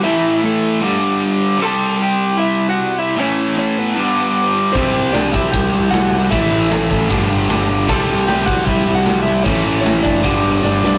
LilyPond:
<<
  \new Staff \with { instrumentName = "Lead electric guitar" } { \time 4/4 \key c \lydian \tempo 4 = 153 <e' e''>4 <a a'>4. r4. | <a' a''>4 <g' g''>4 <e' e''>8. <fis' fis''>8. <e' e''>8 | <cis' cis''>4 <cis' cis''>8 <b b'>2 r8 | <c' c''>4 <d' d''>8 <e' e''>8 <g' g''>4 <fis' fis''>4 |
<e' e''>4 <a a'>4. r4. | <a' a''>4 <g' g''>8 <fis' fis''>8 <e' e''>8. <fis' fis''>8. <e' e''>8 | <cis' cis''>4 <cis' cis''>8 <d' d''>4. <d' d''>8 <d' d''>8 | }
  \new Staff \with { instrumentName = "Distorted electric guitar" } { \clef bass \time 4/4 \key c \lydian <a, e a>2 <g, d g>2 | <c g c'>1 | <a, e a>2 <g, d g>2 | <c g c'>1 |
<a, e a>2 <g, d g>2 | <c g c'>1 | <a, e a>2 <g, d g>2 | }
  \new Staff \with { instrumentName = "Picked electric bass" } { \clef bass \time 4/4 \key c \lydian r1 | r1 | r1 | c,8 c,8 c,8 c,8 c,8 c,8 c,8 c,8 |
a,,8 a,,8 a,,8 a,,8 g,,8 g,,8 g,,8 g,,8 | c,8 c,8 c,8 c,8 c,8 c,8 c,8 c,8 | a,,8 a,,8 a,,8 fis,,8 g,,8 g,,8 g,,8 c,8 | }
  \new DrumStaff \with { instrumentName = "Drums" } \drummode { \time 4/4 r4 r4 r4 r4 | r4 r4 r4 r4 | r4 r4 r4 r4 | <cymc bd>8 cymc8 <cymc sn>8 <cymc bd>8 <cymc bd>8 cymc8 <cymc sn>8 cymc8 |
<cymc bd>8 cymc8 <cymc sn>8 <cymc bd>8 <cymc bd>8 cymc8 <cymc sn>8 cymc8 | <cymc bd>8 cymc8 <cymc sn>8 <cymc bd>8 <cymc bd>8 cymc8 <cymc sn>8 cymc8 | <cymc bd>8 cymc8 <cymc sn>8 <cymc bd>8 <cymc bd>8 cymc8 sn8 sn8 | }
>>